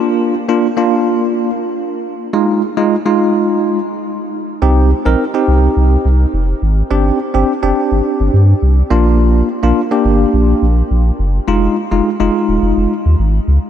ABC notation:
X:1
M:4/4
L:1/16
Q:1/4=105
K:Bbmix
V:1 name="Tine electric piano"
[B,DF]2 z [B,DF] z [B,DF]4- [B,DF] z6 | [A,EF]2 z [A,EF] z [A,EF]4- [A,EF] z6 | [CEG]2 z [CEB] z [CEG]4- [CEG] z6 | [CDG]2 z [CDG] z [CDG]4- [CDG] z4 [B,DF]2- |
[B,DF]2 z [B,DF] z [B,DG]4- [B,DG] z6 | [A,EF]2 z [A,EF] z [A,EF]4- [A,EF] z6 |]
V:2 name="Sub bass" clef=bass
z16 | z16 | C,,3 B,,, z2 C,,2 C,,2 C,,2 F,,,2 A,,,2 | G,,,2 z G,,, z F,,, z G,,, z G,,, G,,2 C,,2 B,,,2- |
B,,,3 B,,, z2 G,,,2 B,,,2 B,,,2 B,,,2 ^F,,,2 | F,,,2 z F,,, z F,,, z E,,, F,,, F,,, z E,, A,,,2 _D,, z |]